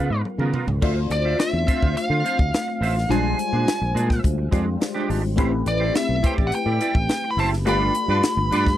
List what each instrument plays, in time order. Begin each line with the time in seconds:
Already playing: clean electric guitar B3 F4 B4, fm electric piano B3 D#4 F4 G#4 A#4, lead electric guitar F5
0.10 fingered electric bass G#2, muted clean electric guitar stroke
0.25 muted clean electric guitar stroke, high tom
0.38 fingered electric bass C#3, clean electric guitar B3 F4 A#4, mid tom
0.54 clean electric guitar B3 F4 A#4, mid tom
0.67 fingered electric bass C#2, muted clean electric guitar stroke, floor tom
0.81 fingered electric bass D2, fm electric piano A3 C4 D4 F4 C5, clean electric guitar F4 C5 E5, kick, crash
0.97 muted clean electric guitar stroke
1.10 fingered electric bass D2, lead electric guitar D5, muted clean electric guitar stroke, closed hi-hat
1.25 clean electric guitar F4 C5 E5
1.39 lead electric guitar E5, muted clean electric guitar stroke, snare, closed hi-hat
1.53 fingered electric bass E2, muted clean electric guitar stroke
1.67 clean electric guitar F4 C5 E5, kick, closed hi-hat
1.82 fingered electric bass D2, clean electric guitar F4 C5 F5, kick
1.95 lead electric guitar F5, muted fingered electric bass stroke, muted clean electric guitar stroke, closed hi-hat
2.10 fingered electric bass D3, clean electric guitar F4 C5 F5
2.24 clean electric guitar F4 C5 F5, closed hi-hat
2.39 fingered electric bass D2, muted clean electric guitar stroke, kick
2.54 snare, closed hi-hat
2.68 muted clean electric guitar stroke
2.81 fingered electric bass A1, clean electric guitar F4 C5 E5, open hi-hat
2.96 muted clean electric guitar stroke, snare
3.09 fingered electric bass A#1, fm electric piano G3 G#3 D4 F4 C5, clean electric guitar G#3 D4 G#4, lead electric guitar G#5, closed hi-hat
3.39 muted clean electric guitar stroke, closed hi-hat
3.53 fingered electric bass A#2, clean electric guitar G#3 D4 G#4
3.68 snare, closed hi-hat
3.81 fingered electric bass A#1, muted clean electric guitar stroke
3.95 fingered electric bass A#2, clean electric guitar G#3 D4 G#4, closed hi-hat
4.10 muted clean electric guitar stroke, kick, snare
4.24 fingered electric bass D2, muted clean electric guitar stroke, kick, closed hi-hat
4.38 muted clean electric guitar stroke
4.51 fingered electric bass F2, clean electric guitar G#3 D4 G#4, fm electric piano G#3 D4 F4 G4 C5, kick, closed hi-hat
4.66 muted clean electric guitar stroke
4.80 muted clean electric guitar stroke, snare, closed hi-hat
4.94 clean electric guitar G#3 D4 G4
5.09 fingered electric bass G#1, clean electric guitar G#3 D4 G4, open hi-hat
5.24 muted clean electric guitar stroke
5.36 fingered electric bass A1, fm electric piano A3 C4 E4 G4 B4, clean electric guitar E4 G4 C5, kick, closed hi-hat
5.52 muted clean electric guitar stroke
5.66 fingered electric bass A1, lead electric guitar D5, muted clean electric guitar stroke, closed hi-hat
5.80 clean electric guitar E4 G4 C5
5.94 lead electric guitar E5, muted clean electric guitar stroke, snare, closed hi-hat
6.09 fingered electric bass B1, muted clean electric guitar stroke
6.23 clean electric guitar E4 G4 C5, lead electric guitar G5, kick, closed hi-hat
6.38 fingered electric bass A1, clean electric guitar E4 G4 D5, kick
6.47 lead electric guitar F#5
6.52 lead electric guitar G5, muted fingered electric bass stroke, muted clean electric guitar stroke, closed hi-hat
6.66 fingered electric bass A2, clean electric guitar E4 G4 D5
6.81 clean electric guitar E4 G4 D5, closed hi-hat
6.95 fingered electric bass A1, muted clean electric guitar stroke, kick
7.09 snare, closed hi-hat
7.24 muted clean electric guitar stroke
7.31 lead electric guitar B5
7.37 fingered electric bass F#1, clean electric guitar E4 G4 C5, lead electric guitar A5, open hi-hat
7.52 muted clean electric guitar stroke, snare
7.65 fingered electric bass G1, horn section G3 F4 B4, fm electric piano A3 D4 F4 G4 A#4, clean electric guitar D4 F4 D5, lead electric guitar B5, closed hi-hat
7.74 fm electric piano B4
7.95 muted clean electric guitar stroke, closed hi-hat
8.08 fingered electric bass G2, horn section G3 F4 B4, clean electric guitar D4 F4 D5
8.24 snare, closed hi-hat
8.37 fingered electric bass G1, muted clean electric guitar stroke
8.51 fingered electric bass G2, horn section G3 F4 B4, clean electric guitar D4 F4 D5, closed hi-hat
8.66 muted clean electric guitar stroke, kick, snare